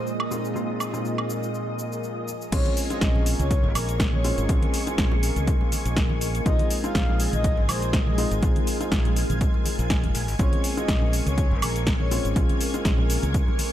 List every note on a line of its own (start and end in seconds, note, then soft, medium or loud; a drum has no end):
0.00 0.28 A#2 medium
0.00 2.24 A#2 medium
0.00 0.28 G#3 medium
0.00 2.24 G#3 medium
0.00 2.38 A#3 medium
0.00 0.28 C4 medium
0.00 0.28 D#4 medium
0.00 0.28 F4 medium
0.00 2.24 F4 medium
0.00 13.72 F4 medium
0.00 13.72 A#4 medium
0.00 2.24 D#5 medium
0.00 2.54 D#5 medium
0.00 13.72 D#5 medium
0.00 13.72 G#5 medium
0.00 2.54 D#6 medium
0.07 shaker soft
0.20 0.47 D#5 medium
0.20 high woodblock medium
0.31 0.53 A#2 medium
0.31 0.53 G#3 medium
0.31 0.53 C4 medium
0.31 0.53 D#4 medium
0.31 0.53 F4 medium
0.31 shaker medium
0.45 shaker soft
0.56 0.90 A#2 medium
0.56 0.90 G#3 medium
0.56 0.90 C4 medium
0.56 0.90 D#4 medium
0.56 0.90 F4 medium
0.56 shaker soft
0.80 high woodblock medium
0.80 shaker medium
0.94 2.26 A#2 medium
0.94 2.26 G#3 medium
0.94 2.26 C4 medium
0.94 2.26 D#4 medium
0.94 2.26 F4 medium
0.94 shaker soft
1.05 shaker soft
1.18 high woodblock medium
1.30 shaker medium
1.43 shaker soft
1.54 shaker soft
1.79 shaker medium
1.92 shaker soft
2.04 shaker soft
2.28 shaker medium
2.42 shaker soft
2.52 2.61 A#1 medium
2.52 2.87 G#3 medium
2.52 6.42 A#3 medium
2.52 2.87 C4 medium
2.52 2.87 C#4 medium
2.52 2.87 F4 medium
2.52 6.42 G#4 medium
2.52 2.80 C#5 loud
2.52 13.72 G#5 medium
2.52 6.42 C#6 medium
2.52 13.72 G#6 medium
2.52 kick loud
2.52 closed hi-hat medium
2.52 crash loud
2.52 low conga medium
2.52 shaker soft
2.66 closed hi-hat soft
2.66 high conga medium
2.77 open hi-hat loud
2.77 shaker medium
2.90 4.22 G#3 medium
2.90 4.22 C4 medium
2.90 4.22 C#4 medium
2.90 4.22 F4 medium
2.90 3.26 D#5 loud
2.90 closed hi-hat medium
2.90 shaker soft
3.01 3.33 A#1 loud
3.01 kick loud
3.01 snare loud
3.01 closed hi-hat medium
3.01 high conga medium
3.01 shaker soft
3.16 low conga medium
3.26 open hi-hat loud
3.26 shaker medium
3.39 3.65 C#2 medium
3.39 3.67 C#5 loud
3.39 closed hi-hat medium
3.39 high conga medium
3.39 shaker soft
3.51 kick loud
3.51 closed hi-hat medium
3.51 shaker soft
3.63 3.72 G#1 loud
3.63 low conga medium
3.75 4.31 A#1 medium
3.75 4.03 A#4 medium
3.75 open hi-hat loud
3.75 high conga medium
3.75 high woodblock medium
3.75 shaker medium
3.89 closed hi-hat medium
3.89 shaker soft
4.00 kick loud
4.00 snare loud
4.00 closed hi-hat medium
4.00 shaker soft
4.13 4.40 C#5 loud
4.13 high conga loud
4.24 4.46 G#3 medium
4.24 4.46 C4 medium
4.24 4.46 C#4 medium
4.24 4.46 F4 medium
4.24 open hi-hat loud
4.24 shaker medium
4.38 4.45 G#1 medium
4.38 closed hi-hat medium
4.38 shaker soft
4.49 4.58 A#1 loud
4.49 4.84 G#3 medium
4.49 4.84 C4 medium
4.49 4.84 C#4 medium
4.49 4.84 F4 medium
4.49 kick loud
4.49 closed hi-hat medium
4.49 low conga medium
4.49 shaker soft
4.62 closed hi-hat soft
4.62 high conga loud
4.74 open hi-hat loud
4.74 shaker medium
4.87 6.43 G#3 medium
4.87 6.43 C4 medium
4.87 6.43 C#4 medium
4.87 6.43 F4 medium
4.87 closed hi-hat medium
4.87 shaker soft
4.98 5.29 A#1 loud
4.98 kick loud
4.98 snare loud
4.98 closed hi-hat medium
4.98 high conga medium
4.98 shaker soft
5.12 low conga loud
5.23 open hi-hat loud
5.23 shaker medium
5.36 5.52 C#2 medium
5.36 closed hi-hat medium
5.36 high conga medium
5.36 shaker soft
5.47 kick loud
5.47 closed hi-hat medium
5.47 shaker soft
5.61 low conga medium
5.72 open hi-hat loud
5.72 high conga medium
5.72 shaker medium
5.85 6.40 A#1 medium
5.85 closed hi-hat medium
5.85 shaker soft
5.96 kick loud
5.96 snare loud
5.96 closed hi-hat medium
5.96 shaker soft
6.09 high conga loud
6.21 open hi-hat loud
6.21 shaker medium
6.35 closed hi-hat medium
6.35 shaker soft
6.46 6.55 A#1 loud
6.46 6.81 G#3 medium
6.46 10.11 G#3 medium
6.46 6.81 C4 medium
6.46 6.81 D#4 medium
6.46 10.11 F4 medium
6.46 6.81 F4 medium
6.46 8.41 D#5 medium
6.46 6.73 D#5 loud
6.46 kick loud
6.46 closed hi-hat medium
6.46 low conga medium
6.46 shaker soft
6.59 closed hi-hat soft
6.59 high conga medium
6.71 open hi-hat loud
6.71 shaker medium
6.84 8.15 G#3 medium
6.84 8.15 C4 medium
6.84 8.15 D#4 medium
6.84 8.15 F4 medium
6.84 7.19 F5 medium
6.84 closed hi-hat soft
6.84 shaker soft
6.95 7.26 A#1 loud
6.95 kick loud
6.95 snare loud
6.95 closed hi-hat medium
6.95 high conga medium
6.95 shaker soft
7.09 low conga medium
7.20 open hi-hat loud
7.20 shaker medium
7.33 7.57 A#1 medium
7.33 7.60 D#5 loud
7.33 closed hi-hat medium
7.33 high conga medium
7.33 shaker soft
7.44 kick loud
7.44 closed hi-hat medium
7.44 shaker soft
7.57 7.65 G#1 loud
7.57 low conga medium
7.68 8.24 A#1 medium
7.68 7.96 C5 medium
7.68 open hi-hat loud
7.68 high conga medium
7.68 high woodblock medium
7.68 shaker medium
7.82 closed hi-hat medium
7.82 shaker soft
7.93 kick loud
7.93 snare loud
7.93 closed hi-hat medium
7.93 shaker soft
8.07 8.34 D#5 loud
8.07 high conga loud
8.18 8.40 G#3 medium
8.18 8.40 C4 medium
8.18 8.40 D#4 medium
8.18 8.40 F4 medium
8.18 open hi-hat loud
8.18 shaker medium
8.31 8.39 G#1 medium
8.31 closed hi-hat medium
8.31 shaker soft
8.42 8.52 A#1 loud
8.42 8.77 G#3 medium
8.42 8.77 C4 medium
8.42 8.77 D#4 medium
8.42 8.77 F4 medium
8.42 10.13 F5 medium
8.42 kick loud
8.42 closed hi-hat medium
8.42 low conga medium
8.42 shaker soft
8.56 closed hi-hat soft
8.56 high conga medium
8.67 open hi-hat loud
8.67 shaker medium
8.80 10.13 G#3 medium
8.80 10.13 C4 medium
8.80 10.13 D#4 medium
8.80 10.13 F4 medium
8.80 closed hi-hat soft
8.80 shaker soft
8.92 9.23 A#1 loud
8.92 kick loud
8.92 snare loud
8.92 closed hi-hat medium
8.92 high conga medium
8.92 shaker soft
9.05 closed hi-hat soft
9.05 low conga medium
9.16 open hi-hat loud
9.16 shaker medium
9.30 9.46 A#1 medium
9.30 closed hi-hat soft
9.30 high conga loud
9.30 shaker soft
9.41 kick loud
9.41 closed hi-hat medium
9.41 shaker soft
9.54 low conga medium
9.65 open hi-hat loud
9.65 high conga medium
9.65 shaker medium
9.79 10.03 A#1 medium
9.79 closed hi-hat medium
9.79 shaker soft
9.90 kick loud
9.90 snare loud
9.90 closed hi-hat medium
9.90 shaker soft
10.03 10.11 F1 medium
10.03 closed hi-hat soft
10.03 high conga medium
10.15 10.28 A#1 medium
10.15 13.72 A#3 medium
10.15 12.09 G#4 medium
10.15 13.72 C#6 medium
10.15 open hi-hat loud
10.15 shaker medium
10.28 10.36 G#1 medium
10.28 open hi-hat medium
10.28 shaker soft
10.39 10.48 A#1 medium
10.39 10.74 G#3 medium
10.39 10.74 C4 medium
10.39 10.74 C#4 medium
10.39 10.74 F4 medium
10.39 10.67 C#5 loud
10.39 kick loud
10.39 closed hi-hat medium
10.39 low conga medium
10.39 shaker soft
10.52 closed hi-hat soft
10.52 high conga medium
10.64 open hi-hat loud
10.64 shaker medium
10.77 12.09 G#3 medium
10.77 12.09 C4 medium
10.77 12.09 C#4 medium
10.77 12.09 F4 medium
10.77 11.13 D#5 loud
10.77 closed hi-hat soft
10.77 shaker soft
10.88 11.19 A#1 loud
10.88 kick loud
10.88 snare loud
10.88 closed hi-hat medium
10.88 high conga medium
10.88 shaker soft
11.01 low conga medium
11.13 open hi-hat loud
11.13 shaker medium
11.26 11.52 C#2 medium
11.26 11.53 C#5 loud
11.26 closed hi-hat medium
11.26 high conga medium
11.26 shaker soft
11.38 kick loud
11.38 closed hi-hat medium
11.38 shaker soft
11.51 11.59 G#1 loud
11.51 low conga medium
11.62 12.18 A#1 medium
11.62 11.90 A#4 medium
11.62 open hi-hat loud
11.62 high conga medium
11.62 high woodblock medium
11.62 shaker medium
11.76 closed hi-hat medium
11.76 shaker soft
11.87 kick loud
11.87 snare loud
11.87 closed hi-hat medium
11.87 shaker soft
12.00 12.27 C#5 loud
12.00 high conga medium
12.11 12.33 G#3 medium
12.11 12.33 C4 medium
12.11 12.33 C#4 medium
12.11 12.33 F4 medium
12.11 13.72 A#4 medium
12.11 open hi-hat loud
12.11 shaker medium
12.25 12.32 G#1 medium
12.25 closed hi-hat medium
12.25 shaker soft
12.36 12.45 A#1 loud
12.36 12.71 G#3 medium
12.36 12.71 C4 medium
12.36 12.71 C#4 medium
12.36 12.71 F4 medium
12.36 kick loud
12.36 closed hi-hat medium
12.36 low conga medium
12.36 shaker soft
12.49 closed hi-hat soft
12.49 high conga medium
12.61 open hi-hat loud
12.61 shaker medium
12.74 13.72 G#3 medium
12.74 13.72 C4 medium
12.74 13.72 C#4 medium
12.74 13.72 F4 medium
12.74 closed hi-hat medium
12.74 shaker soft
12.85 13.16 A#1 loud
12.85 kick loud
12.85 snare loud
12.85 closed hi-hat medium
12.85 high conga medium
12.85 shaker soft
12.98 low conga medium
13.10 open hi-hat loud
13.10 shaker medium
13.23 13.39 C#2 medium
13.23 closed hi-hat medium
13.23 high conga medium
13.23 shaker soft
13.34 kick loud
13.34 closed hi-hat medium
13.34 shaker soft
13.48 low conga medium
13.59 open hi-hat loud
13.59 high conga medium
13.59 shaker medium